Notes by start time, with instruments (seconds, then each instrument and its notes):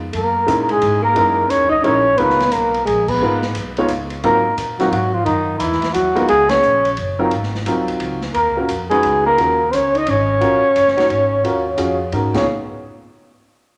Already playing: upright bass F2
0.13 upright bass F#2, alto saxophone A#3, flugelhorn A#4, ride
0.47 upright bass A#2, upright piano G#3 C#4 D#4 E4 A#4, hi-hat pedal, ride
0.69 alto saxophone G#3, flugelhorn G#4, ride
0.82 upright bass G#2, ride
1.02 alto saxophone A#3, flugelhorn A#4
1.15 upright bass F#2, upright piano G#3 C#4 D#4 E4 A#4, ride
1.48 upright bass D#2, alto saxophone C#4, flugelhorn C#5, hi-hat pedal, ride
1.69 alto saxophone D#4, flugelhorn D#5, muted upright bass stroke, kick
1.81 upright bass A#1, upright piano G#3 C#4 D#4 E4 A#4, alto saxophone C#4, flugelhorn C#5, ride
2.17 upright bass C#2, upright piano G#3 B3 D#4 F4 A#4, alto saxophone B3, flugelhorn B4, ride
2.30 snare
2.40 snare, ride
2.51 upright bass B1, alto saxophone A#3, flugelhorn A#4, hi-hat pedal, ride
2.74 ride
2.85 upright bass A#1, alto saxophone G#3, flugelhorn G#4, ride
3.08 alto saxophone B3, flugelhorn B4, kick, crash
3.20 upright bass G#1, upright piano G#3 B3 D#4 F4 A#4
3.42 snare
3.55 upright bass B1, hi-hat pedal, ride
3.77 upright piano G#3 B3 D#4 F4 C#5, ride
3.88 upright bass C#2, hi-hat pedal, ride
4.10 ride
4.23 upright bass G#2, upright piano F#3 C4 D#4 F4 A#4, alto saxophone A#3, flugelhorn A#4, ride
4.57 upright bass A#2, hi-hat pedal, ride
4.79 alto saxophone F#3, upright piano F#3 C4 D#4 F4 A#4, flugelhorn F#4, snare, ride
4.91 upright bass G#2, alto saxophone F#3, flugelhorn F#4, ride
5.13 alto saxophone F3, flugelhorn F4
5.25 upright bass F#2, alto saxophone D#3, flugelhorn D#4, ride
5.59 upright bass E2, alto saxophone E3, flugelhorn E4, hi-hat pedal, ride
5.72 snare
5.82 muted upright bass stroke, snare, ride
5.93 upright bass D#2, alto saxophone F#3, flugelhorn F#4, hi-hat pedal, ride
6.15 upright piano G#3 B3 D#4 F4 A#4, ride
6.28 upright bass C#2, alto saxophone G#3, flugelhorn G#4, ride
6.49 alto saxophone C#4, flugelhorn C#5, snare, ride
6.62 upright bass A#1, hi-hat pedal
6.85 ride
6.97 upright bass F#1, ride
7.19 upright piano F#3 C4 D#4 F4 A#4
7.31 upright bass G#1, ride
7.43 snare
7.55 snare
7.66 upright bass C2, upright piano F#3 C4 D#4 F4 A#4, hi-hat pedal, ride
7.88 ride
8.00 upright bass C#2, ride
8.22 snare
8.34 upright bass D#2, alto saxophone A#3, flugelhorn A#4, ride
8.47 upright bass C#2
8.57 upright bass A#1, upright piano C#4 F4 F#4 A#4
8.69 upright bass F2, hi-hat pedal, ride
8.90 alto saxophone G#3, upright piano C#4 D#4 F#4 B4, flugelhorn G#4, ride
9.03 upright bass C#2, ride
9.26 alto saxophone A#3, flugelhorn A#4
9.38 upright bass D#2, upright piano C#4 F4 F#4 A#4, ride
9.70 upright bass C#2, alto saxophone C4 C#4, flugelhorn C5, hi-hat pedal, ride
9.74 flugelhorn C#5
9.95 alto saxophone D#4, flugelhorn D#5, ride
10.07 upright bass G#1, alto saxophone C#4, ride
10.11 flugelhorn C#5
10.41 upright bass A#1, upright piano C#4 F4 F#4 A#4, ride
10.63 muted upright bass stroke
10.76 upright bass F#1, hi-hat pedal, ride
10.88 snare
10.97 upright piano C#4 D#4 F#4 C#5, snare, ride
11.10 upright bass G#1, ride
11.44 upright bass D#2, upright piano C#4 F4 F#4 A#4, ride
11.77 upright bass F2, upright piano C#4 F4 F#4 G#4, hi-hat pedal, ride
12.12 upright bass G#2, upright piano C#4 D#4 F#4 A#4, ride
12.33 upright bass C#2, upright piano B3 D#4 F4 G#4, alto saxophone C#4, flugelhorn C#5, kick, snare, crash